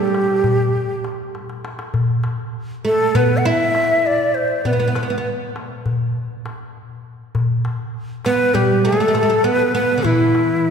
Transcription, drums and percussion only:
0.14 darbuka tek
0.44 darbuka dum
0.74 darbuka ka
1.04 darbuka tek
1.35 darbuka tek
1.49 darbuka ka
1.65 darbuka tek
1.79 darbuka ka
1.94 darbuka dum
2.24 darbuka tek
3.15 darbuka dum
3.75 darbuka tek
4.05 darbuka ka
4.65 darbuka dum
4.95 darbuka tek
5.56 darbuka tek
5.86 darbuka dum
6.46 darbuka tek
7.35 darbuka dum
7.65 darbuka tek
8.25 darbuka tek
8.55 darbuka dum
9.14 darbuka tek
9.45 darbuka ka
10.05 darbuka dum
10.35 darbuka tek
10.65 darbuka ka

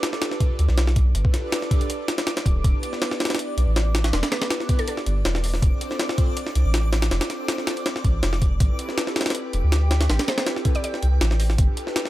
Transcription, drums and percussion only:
0.03 snare, closed hi-hat
0.13 snare
0.22 snare, closed hi-hat
0.31 snare
0.40 kick, closed hi-hat
0.59 closed hi-hat
0.69 snare
0.78 snare, closed hi-hat
0.87 snare
0.96 kick, closed hi-hat
1.15 closed hi-hat
1.25 kick
1.34 snare, closed hi-hat
1.52 snare, closed hi-hat
1.62 snare
1.71 kick, closed hi-hat
1.81 closed hi-hat
1.90 closed hi-hat
2.08 snare, closed hi-hat
2.18 snare, closed hi-hat
2.27 snare, closed hi-hat
2.37 snare, closed hi-hat
2.46 kick, closed hi-hat
2.64 kick, closed hi-hat
2.83 closed hi-hat
2.93 snare
3.02 snare, closed hi-hat
3.11 snare
3.20 snare, closed hi-hat
3.25 snare, closed hi-hat
3.30 snare, closed hi-hat
3.35 snare, closed hi-hat
3.39 closed hi-hat
3.58 closed hi-hat
3.76 snare, closed hi-hat
3.95 snare, closed hi-hat
4.04 snare, closed hi-hat
4.13 snare, closed hi-hat
4.23 snare, closed hi-hat
4.32 snare, closed hi-hat
4.42 snare, closed hi-hat
4.50 snare, closed hi-hat
4.60 snare
4.69 kick, closed hi-hat
4.79 closed hi-hat
4.88 closed hi-hat
4.97 snare
5.06 closed hi-hat
5.25 snare, closed hi-hat
5.35 snare
5.44 open hi-hat
5.54 snare
5.62 kick, closed hi-hat
5.81 closed hi-hat
5.91 snare
5.99 snare, closed hi-hat
6.09 snare
6.18 kick, closed hi-hat
6.37 closed hi-hat
6.47 snare
6.55 closed hi-hat
6.74 snare, closed hi-hat
6.93 snare, closed hi-hat
7.02 snare, closed hi-hat
7.11 snare, closed hi-hat
7.21 snare, closed hi-hat
7.30 snare, closed hi-hat
7.48 snare, closed hi-hat
7.58 snare
7.67 snare, closed hi-hat
7.77 closed hi-hat
7.86 snare, closed hi-hat
7.96 snare
8.04 kick, closed hi-hat
8.23 snare, closed hi-hat
8.33 snare
8.42 kick, closed hi-hat
8.60 kick, closed hi-hat
8.79 closed hi-hat
8.89 snare
8.98 snare, closed hi-hat
9.07 snare
9.16 snare, closed hi-hat
9.21 snare, closed hi-hat
9.26 snare, closed hi-hat
9.30 snare, closed hi-hat
9.35 closed hi-hat
9.53 closed hi-hat
9.72 snare, closed hi-hat
9.91 snare, closed hi-hat
10.01 snare, closed hi-hat
10.10 snare, closed hi-hat
10.19 snare, closed hi-hat
10.28 snare, closed hi-hat
10.38 snare, closed hi-hat
10.47 snare, closed hi-hat
10.56 snare
10.65 kick, closed hi-hat
10.75 closed hi-hat
10.84 closed hi-hat
10.94 snare
11.03 closed hi-hat
11.21 snare, closed hi-hat
11.31 snare
11.40 open hi-hat
11.50 snare
11.58 kick, closed hi-hat
11.77 closed hi-hat
11.87 snare
11.96 snare, closed hi-hat
12.05 snare

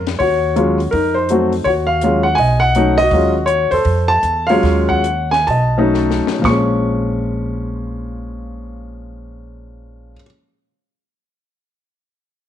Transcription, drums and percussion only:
0.07 snare, ride
0.20 kick, open hi-hat
0.56 closed hi-hat
0.80 open hi-hat
0.93 kick, open hi-hat
1.29 closed hi-hat
1.53 open hi-hat
1.65 kick, open hi-hat
2.01 closed hi-hat
2.38 kick, open hi-hat
2.75 closed hi-hat
2.98 open hi-hat
3.11 kick, open hi-hat
3.48 closed hi-hat
3.72 open hi-hat
3.85 kick, open hi-hat
4.23 closed hi-hat
4.49 open hi-hat
4.63 kick, snare, open hi-hat
4.90 kick
5.04 closed hi-hat
5.33 snare
5.48 kick, open hi-hat
5.94 snare
6.11 snare
6.27 snare
6.44 kick, snare

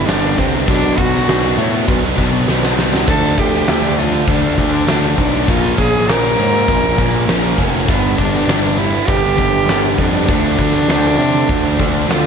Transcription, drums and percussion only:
0.08 snare, open hi-hat
0.38 kick
0.68 kick, open hi-hat
0.84 snare
0.98 kick
1.14 snare
1.28 snare, open hi-hat
1.88 kick, open hi-hat
2.18 kick
2.48 snare
2.63 snare
2.79 snare
2.94 snare
3.07 kick, crash
3.24 snare
3.38 kick
3.54 snare
3.67 snare, open hi-hat
4.27 kick, open hi-hat
4.58 kick
4.88 snare, open hi-hat
5.18 kick
5.48 kick, open hi-hat
5.65 snare
5.78 kick
6.09 snare, open hi-hat
6.68 kick, open hi-hat
6.98 kick
7.28 snare, open hi-hat
7.58 kick
7.88 kick, open hi-hat
8.18 kick
8.34 snare
8.49 snare, open hi-hat
9.08 kick, open hi-hat
9.38 kick
9.68 snare, open hi-hat
9.98 kick
10.29 kick, open hi-hat
10.45 snare
10.59 kick
10.75 snare
10.89 snare, open hi-hat
11.49 kick, open hi-hat
11.80 kick
12.10 snare, open hi-hat

